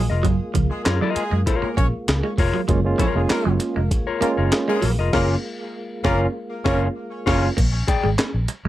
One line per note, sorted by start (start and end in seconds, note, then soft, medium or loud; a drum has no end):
0.00 7.54 G#3 medium
0.00 7.54 A#3 medium
0.00 7.54 F4 medium
0.10 0.25 F1 medium
0.10 0.26 F4 soft
0.10 0.26 A#4 soft
0.10 0.25 D#5 medium
0.23 0.37 F#1 loud
0.23 0.37 F#3 loud
0.23 kick medium
0.23 closed hi-hat medium
0.54 0.68 C#2 medium
0.54 0.68 F3 medium
0.54 kick medium
0.54 closed hi-hat medium
0.70 0.82 G#3 medium
0.70 0.82 G#4 medium
0.70 muted clean electric guitar stroke soft
0.85 0.99 F#2 medium
0.85 0.95 A#3 medium
0.85 1.02 F4 medium
0.85 0.95 A#4 medium
0.85 1.02 A#4 medium
0.85 1.02 C#5 medium
0.85 snare loud
0.85 clap medium
0.85 closed hi-hat medium
1.01 1.14 F#3 medium
1.01 1.23 F4 medium
1.01 1.23 A#4 medium
1.01 1.22 D#5 medium
1.15 1.40 G#3 loud
1.15 1.41 G#4 loud
1.15 muted clean electric guitar stroke soft
1.15 muted fingered electric bass stroke soft
1.15 closed hi-hat medium
1.31 1.44 F#2 loud
1.31 1.44 G#3 medium
1.46 1.68 F4 medium
1.46 1.69 A#4 medium
1.46 1.69 C#5 medium
1.46 muted clean electric guitar stroke soft
1.46 kick medium
1.46 closed hi-hat loud
1.62 1.74 A#3 medium
1.62 1.75 A#3 medium
1.62 1.74 A#4 medium
1.62 muted fingered electric bass stroke soft
1.77 1.90 A#1 loud
1.77 1.91 A#3 medium
1.77 1.87 C#4 medium
1.77 1.87 C#5 medium
1.77 kick loud
1.77 closed hi-hat medium
2.08 2.21 C#2 medium
2.08 snare loud
2.08 clap medium
2.08 closed hi-hat medium
2.23 2.36 G#3 medium
2.38 2.51 F1 medium
2.38 2.60 F4 medium
2.38 2.60 A#4 medium
2.38 2.61 C#5 loud
2.38 muted clean electric guitar stroke soft
2.38 kick medium
2.38 open hi-hat medium
2.54 2.66 F#3 medium
2.68 2.93 F#1 loud
2.68 2.82 F#3 medium
2.68 2.78 G#3 medium
2.68 2.79 A#3 medium
2.68 2.79 C#4 medium
2.68 2.79 F4 medium
2.68 kick loud
2.68 closed hi-hat medium
2.85 3.02 G#3 medium
2.85 3.03 A#3 medium
2.85 3.03 C#4 medium
2.85 3.03 F4 medium
2.98 3.12 F3 medium
2.98 3.13 C#4 medium
2.98 3.21 F4 medium
2.98 3.21 A#4 medium
2.98 3.21 C#5 medium
2.98 3.13 C#5 loud
2.98 kick medium
2.98 closed hi-hat medium
3.14 3.27 F1 medium
3.14 3.79 G#3 medium
3.14 3.28 G#3 medium
3.14 3.79 A#3 medium
3.14 3.80 C#4 medium
3.14 3.80 F4 medium
3.14 3.28 G#4 medium
3.14 muted clean electric guitar stroke medium
3.30 3.54 A#3 medium
3.30 3.54 A#4 loud
3.30 muted fingered electric bass stroke soft
3.30 snare loud
3.30 clap medium
3.30 closed hi-hat medium
3.45 3.58 F#1 medium
3.45 3.58 F#3 medium
3.60 muted clean electric guitar stroke medium
3.60 closed hi-hat medium
3.76 3.88 F1 medium
3.76 3.89 G#3 medium
3.91 kick medium
3.91 closed hi-hat medium
4.07 4.28 F4 medium
4.07 4.27 A#4 medium
4.07 4.27 C#5 medium
4.21 4.76 G#3 loud
4.21 4.35 A#3 medium
4.21 4.77 A#3 medium
4.21 4.31 A#3 medium
4.21 4.77 C#4 medium
4.21 4.77 F4 loud
4.21 4.31 A#4 medium
4.21 muted fingered electric bass stroke soft
4.21 closed hi-hat medium
4.37 4.49 F#1 medium
4.37 4.54 F4 soft
4.37 4.53 A#4 medium
4.37 4.53 C#5 medium
4.51 muted clean electric guitar stroke soft
4.51 snare loud
4.51 clap loud
4.51 closed hi-hat medium
4.68 4.80 G#3 medium
4.68 4.93 G#3 medium
4.68 4.90 F4 medium
4.68 4.93 G#4 loud
4.68 4.89 A#4 medium
4.68 4.89 C#5 medium
4.82 4.96 A#1 medium
4.82 4.96 F#3 medium
4.82 open hi-hat medium
4.99 5.10 F1 medium
4.99 5.13 F4 medium
4.99 5.12 A#4 medium
4.99 5.13 D#5 medium
5.12 5.35 F#1 loud
5.12 5.29 A#3 loud
5.12 5.34 A#3 loud
5.12 5.34 C#4 loud
5.12 5.35 F4 loud
5.12 5.28 A#4 loud
5.12 5.35 A#4 loud
5.12 kick medium
5.12 snare medium
5.12 crash medium
6.04 6.26 F#1 loud
6.04 6.25 A#3 loud
6.04 6.20 A#3 loud
6.04 6.26 C#4 loud
6.04 6.26 F4 loud
6.04 6.20 A#4 loud
6.04 6.26 A#4 loud
6.04 kick loud
6.04 snare loud
6.65 6.87 F#1 loud
6.65 6.87 A#3 loud
6.65 6.81 C#4 loud
6.65 6.87 C#4 loud
6.65 6.87 F4 loud
6.65 6.88 F4 loud
6.65 6.87 A#4 loud
6.65 6.81 C#5 loud
6.65 6.87 C#5 loud
6.65 kick loud
6.65 snare loud
7.26 7.48 F#1 medium
7.26 7.48 A#3 medium
7.26 7.42 C#4 loud
7.26 7.48 C#4 loud
7.26 7.47 F4 loud
7.26 7.49 F4 loud
7.26 7.48 A#4 loud
7.26 7.42 C#5 loud
7.26 7.49 C#5 loud
7.26 kick medium
7.26 snare loud
7.26 crash medium
7.57 7.82 A#1 loud
7.57 7.71 A#3 medium
7.57 kick loud
7.57 closed hi-hat medium
7.57 crash medium
7.88 8.09 G#4 medium
7.88 8.09 D5 medium
7.88 8.10 G5 medium
7.88 muted clean electric guitar stroke medium
7.88 kick medium
7.88 closed hi-hat medium
8.03 8.15 G#1 medium
8.03 8.16 G#3 medium
8.18 8.32 A#3 medium
8.18 snare loud
8.18 clap medium
8.18 closed hi-hat medium
8.34 8.46 A#1 medium
8.48 muted clean electric guitar stroke soft
8.48 closed hi-hat medium
8.65 8.68 G#1 medium